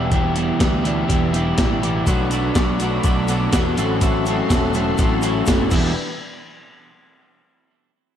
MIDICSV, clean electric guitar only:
0, 0, Header, 1, 2, 480
1, 0, Start_track
1, 0, Key_signature, 1, "minor"
1, 0, Tempo, 486618
1, 117, Time_signature, 4, 2, 24, 8
1, 8052, End_track
2, 0, Start_track
2, 0, Title_t, "Clean electric guitar"
2, 0, Program_c, 0, 27
2, 0, Note_on_c, 0, 47, 104
2, 0, Note_on_c, 0, 52, 93
2, 0, Note_on_c, 0, 55, 98
2, 0, Note_on_c, 0, 62, 101
2, 0, Note_on_c, 0, 64, 100
2, 106, Note_off_c, 0, 47, 0
2, 108, Note_off_c, 0, 52, 0
2, 108, Note_on_c, 0, 40, 94
2, 115, Note_off_c, 0, 55, 0
2, 118, Note_on_c, 0, 47, 94
2, 120, Note_on_c, 0, 52, 97
2, 121, Note_off_c, 0, 64, 0
2, 123, Note_off_c, 0, 62, 0
2, 127, Note_on_c, 0, 55, 91
2, 127, Note_on_c, 0, 62, 89
2, 133, Note_on_c, 0, 64, 94
2, 332, Note_off_c, 0, 40, 0
2, 344, Note_off_c, 0, 52, 0
2, 344, Note_on_c, 0, 40, 74
2, 347, Note_off_c, 0, 47, 0
2, 349, Note_off_c, 0, 55, 0
2, 355, Note_off_c, 0, 64, 0
2, 356, Note_on_c, 0, 52, 78
2, 359, Note_on_c, 0, 47, 78
2, 361, Note_on_c, 0, 55, 79
2, 362, Note_off_c, 0, 62, 0
2, 366, Note_on_c, 0, 62, 77
2, 367, Note_on_c, 0, 64, 83
2, 587, Note_off_c, 0, 40, 0
2, 594, Note_off_c, 0, 47, 0
2, 599, Note_on_c, 0, 40, 85
2, 601, Note_off_c, 0, 52, 0
2, 606, Note_off_c, 0, 55, 0
2, 606, Note_on_c, 0, 47, 85
2, 612, Note_on_c, 0, 52, 97
2, 614, Note_off_c, 0, 62, 0
2, 615, Note_off_c, 0, 64, 0
2, 618, Note_on_c, 0, 55, 91
2, 618, Note_on_c, 0, 62, 102
2, 627, Note_on_c, 0, 64, 97
2, 824, Note_off_c, 0, 40, 0
2, 828, Note_off_c, 0, 47, 0
2, 836, Note_off_c, 0, 52, 0
2, 836, Note_on_c, 0, 40, 95
2, 840, Note_on_c, 0, 47, 97
2, 841, Note_off_c, 0, 55, 0
2, 841, Note_off_c, 0, 62, 0
2, 844, Note_off_c, 0, 64, 0
2, 848, Note_on_c, 0, 52, 107
2, 853, Note_on_c, 0, 55, 105
2, 853, Note_on_c, 0, 62, 110
2, 856, Note_on_c, 0, 64, 111
2, 1069, Note_off_c, 0, 40, 0
2, 1069, Note_off_c, 0, 47, 0
2, 1077, Note_off_c, 0, 52, 0
2, 1081, Note_off_c, 0, 55, 0
2, 1081, Note_on_c, 0, 40, 90
2, 1081, Note_on_c, 0, 47, 84
2, 1084, Note_off_c, 0, 64, 0
2, 1087, Note_off_c, 0, 62, 0
2, 1089, Note_on_c, 0, 52, 83
2, 1093, Note_on_c, 0, 55, 95
2, 1096, Note_on_c, 0, 64, 87
2, 1099, Note_on_c, 0, 62, 95
2, 1308, Note_off_c, 0, 40, 0
2, 1313, Note_off_c, 0, 47, 0
2, 1320, Note_off_c, 0, 52, 0
2, 1320, Note_on_c, 0, 40, 86
2, 1324, Note_off_c, 0, 55, 0
2, 1325, Note_on_c, 0, 47, 99
2, 1328, Note_off_c, 0, 64, 0
2, 1330, Note_off_c, 0, 62, 0
2, 1332, Note_on_c, 0, 52, 94
2, 1336, Note_on_c, 0, 55, 96
2, 1340, Note_on_c, 0, 64, 111
2, 1342, Note_on_c, 0, 62, 96
2, 1555, Note_off_c, 0, 40, 0
2, 1561, Note_off_c, 0, 47, 0
2, 1566, Note_off_c, 0, 52, 0
2, 1566, Note_off_c, 0, 55, 0
2, 1567, Note_on_c, 0, 40, 78
2, 1570, Note_off_c, 0, 62, 0
2, 1573, Note_on_c, 0, 47, 78
2, 1577, Note_off_c, 0, 64, 0
2, 1577, Note_on_c, 0, 52, 80
2, 1578, Note_on_c, 0, 55, 94
2, 1582, Note_on_c, 0, 62, 89
2, 1589, Note_on_c, 0, 64, 89
2, 1786, Note_off_c, 0, 40, 0
2, 1795, Note_off_c, 0, 47, 0
2, 1798, Note_on_c, 0, 40, 85
2, 1799, Note_off_c, 0, 52, 0
2, 1801, Note_off_c, 0, 55, 0
2, 1803, Note_off_c, 0, 62, 0
2, 1807, Note_off_c, 0, 64, 0
2, 1807, Note_on_c, 0, 47, 85
2, 1811, Note_on_c, 0, 52, 91
2, 1813, Note_on_c, 0, 55, 92
2, 1815, Note_on_c, 0, 62, 89
2, 1819, Note_on_c, 0, 64, 85
2, 2025, Note_off_c, 0, 40, 0
2, 2030, Note_off_c, 0, 47, 0
2, 2032, Note_off_c, 0, 52, 0
2, 2033, Note_off_c, 0, 55, 0
2, 2034, Note_off_c, 0, 62, 0
2, 2036, Note_off_c, 0, 64, 0
2, 2042, Note_on_c, 0, 47, 96
2, 2048, Note_on_c, 0, 57, 99
2, 2049, Note_on_c, 0, 54, 92
2, 2055, Note_on_c, 0, 62, 102
2, 2060, Note_on_c, 0, 66, 100
2, 2262, Note_off_c, 0, 47, 0
2, 2273, Note_off_c, 0, 62, 0
2, 2274, Note_on_c, 0, 47, 91
2, 2277, Note_off_c, 0, 54, 0
2, 2280, Note_off_c, 0, 57, 0
2, 2281, Note_on_c, 0, 54, 76
2, 2284, Note_on_c, 0, 57, 85
2, 2285, Note_on_c, 0, 62, 91
2, 2286, Note_off_c, 0, 66, 0
2, 2290, Note_on_c, 0, 66, 81
2, 2501, Note_off_c, 0, 47, 0
2, 2513, Note_on_c, 0, 47, 83
2, 2514, Note_off_c, 0, 54, 0
2, 2517, Note_off_c, 0, 62, 0
2, 2517, Note_on_c, 0, 54, 88
2, 2518, Note_off_c, 0, 57, 0
2, 2522, Note_on_c, 0, 57, 93
2, 2527, Note_off_c, 0, 66, 0
2, 2529, Note_on_c, 0, 62, 95
2, 2531, Note_on_c, 0, 66, 97
2, 2761, Note_off_c, 0, 47, 0
2, 2771, Note_off_c, 0, 54, 0
2, 2773, Note_on_c, 0, 47, 103
2, 2774, Note_off_c, 0, 57, 0
2, 2774, Note_on_c, 0, 54, 97
2, 2775, Note_off_c, 0, 62, 0
2, 2778, Note_on_c, 0, 57, 95
2, 2782, Note_off_c, 0, 66, 0
2, 2786, Note_on_c, 0, 66, 105
2, 2787, Note_on_c, 0, 62, 112
2, 2988, Note_off_c, 0, 47, 0
2, 2994, Note_off_c, 0, 54, 0
2, 2996, Note_off_c, 0, 57, 0
2, 3000, Note_on_c, 0, 47, 83
2, 3005, Note_off_c, 0, 62, 0
2, 3005, Note_on_c, 0, 54, 80
2, 3008, Note_off_c, 0, 66, 0
2, 3008, Note_on_c, 0, 57, 87
2, 3016, Note_on_c, 0, 62, 92
2, 3020, Note_on_c, 0, 66, 100
2, 3231, Note_off_c, 0, 47, 0
2, 3243, Note_on_c, 0, 47, 98
2, 3247, Note_off_c, 0, 54, 0
2, 3249, Note_off_c, 0, 57, 0
2, 3251, Note_off_c, 0, 62, 0
2, 3253, Note_off_c, 0, 66, 0
2, 3258, Note_on_c, 0, 54, 90
2, 3261, Note_on_c, 0, 57, 102
2, 3263, Note_on_c, 0, 62, 99
2, 3265, Note_on_c, 0, 66, 100
2, 3474, Note_off_c, 0, 47, 0
2, 3480, Note_off_c, 0, 54, 0
2, 3480, Note_off_c, 0, 57, 0
2, 3485, Note_off_c, 0, 62, 0
2, 3486, Note_off_c, 0, 66, 0
2, 3486, Note_on_c, 0, 47, 88
2, 3491, Note_on_c, 0, 54, 87
2, 3492, Note_on_c, 0, 57, 80
2, 3497, Note_on_c, 0, 62, 97
2, 3498, Note_on_c, 0, 66, 99
2, 3709, Note_off_c, 0, 47, 0
2, 3712, Note_off_c, 0, 54, 0
2, 3713, Note_off_c, 0, 57, 0
2, 3715, Note_off_c, 0, 62, 0
2, 3715, Note_off_c, 0, 66, 0
2, 3721, Note_on_c, 0, 45, 93
2, 3728, Note_on_c, 0, 54, 91
2, 3733, Note_on_c, 0, 57, 107
2, 3733, Note_on_c, 0, 60, 113
2, 3734, Note_on_c, 0, 64, 102
2, 3945, Note_off_c, 0, 54, 0
2, 3947, Note_off_c, 0, 45, 0
2, 3957, Note_off_c, 0, 57, 0
2, 3957, Note_off_c, 0, 60, 0
2, 3957, Note_on_c, 0, 54, 95
2, 3959, Note_on_c, 0, 45, 91
2, 3962, Note_off_c, 0, 64, 0
2, 3968, Note_on_c, 0, 57, 90
2, 3969, Note_on_c, 0, 60, 101
2, 3974, Note_on_c, 0, 64, 103
2, 4198, Note_off_c, 0, 45, 0
2, 4203, Note_off_c, 0, 54, 0
2, 4208, Note_off_c, 0, 57, 0
2, 4209, Note_on_c, 0, 45, 82
2, 4210, Note_off_c, 0, 64, 0
2, 4211, Note_off_c, 0, 60, 0
2, 4215, Note_on_c, 0, 54, 87
2, 4220, Note_on_c, 0, 57, 79
2, 4221, Note_on_c, 0, 64, 87
2, 4223, Note_on_c, 0, 60, 91
2, 4420, Note_off_c, 0, 45, 0
2, 4429, Note_off_c, 0, 54, 0
2, 4431, Note_off_c, 0, 57, 0
2, 4432, Note_on_c, 0, 45, 83
2, 4437, Note_off_c, 0, 60, 0
2, 4440, Note_on_c, 0, 54, 95
2, 4442, Note_off_c, 0, 64, 0
2, 4443, Note_on_c, 0, 57, 96
2, 4449, Note_on_c, 0, 60, 90
2, 4454, Note_on_c, 0, 64, 97
2, 4670, Note_off_c, 0, 45, 0
2, 4675, Note_off_c, 0, 54, 0
2, 4680, Note_off_c, 0, 57, 0
2, 4681, Note_on_c, 0, 45, 103
2, 4685, Note_off_c, 0, 64, 0
2, 4686, Note_off_c, 0, 60, 0
2, 4686, Note_on_c, 0, 54, 108
2, 4692, Note_on_c, 0, 57, 108
2, 4697, Note_on_c, 0, 64, 113
2, 4698, Note_on_c, 0, 60, 104
2, 4900, Note_off_c, 0, 45, 0
2, 4904, Note_off_c, 0, 54, 0
2, 4911, Note_off_c, 0, 57, 0
2, 4911, Note_on_c, 0, 45, 89
2, 4913, Note_off_c, 0, 60, 0
2, 4916, Note_on_c, 0, 54, 77
2, 4917, Note_off_c, 0, 64, 0
2, 4922, Note_on_c, 0, 57, 94
2, 4924, Note_on_c, 0, 60, 92
2, 4929, Note_on_c, 0, 64, 96
2, 5135, Note_off_c, 0, 45, 0
2, 5144, Note_off_c, 0, 54, 0
2, 5145, Note_off_c, 0, 60, 0
2, 5146, Note_off_c, 0, 57, 0
2, 5147, Note_on_c, 0, 45, 99
2, 5153, Note_off_c, 0, 64, 0
2, 5156, Note_on_c, 0, 54, 92
2, 5157, Note_on_c, 0, 60, 104
2, 5158, Note_on_c, 0, 57, 98
2, 5165, Note_on_c, 0, 64, 98
2, 5377, Note_off_c, 0, 45, 0
2, 5389, Note_off_c, 0, 54, 0
2, 5389, Note_on_c, 0, 45, 90
2, 5391, Note_off_c, 0, 57, 0
2, 5395, Note_off_c, 0, 60, 0
2, 5401, Note_on_c, 0, 54, 81
2, 5403, Note_off_c, 0, 64, 0
2, 5403, Note_on_c, 0, 57, 80
2, 5407, Note_on_c, 0, 60, 90
2, 5415, Note_on_c, 0, 64, 89
2, 5635, Note_off_c, 0, 45, 0
2, 5636, Note_on_c, 0, 40, 88
2, 5638, Note_off_c, 0, 64, 0
2, 5639, Note_off_c, 0, 54, 0
2, 5640, Note_on_c, 0, 47, 96
2, 5642, Note_off_c, 0, 57, 0
2, 5643, Note_off_c, 0, 60, 0
2, 5643, Note_on_c, 0, 52, 104
2, 5647, Note_on_c, 0, 55, 103
2, 5650, Note_on_c, 0, 64, 110
2, 5652, Note_on_c, 0, 62, 96
2, 5830, Note_off_c, 0, 40, 0
2, 5832, Note_off_c, 0, 47, 0
2, 5834, Note_off_c, 0, 52, 0
2, 5836, Note_off_c, 0, 55, 0
2, 5837, Note_off_c, 0, 64, 0
2, 5838, Note_off_c, 0, 62, 0
2, 8052, End_track
0, 0, End_of_file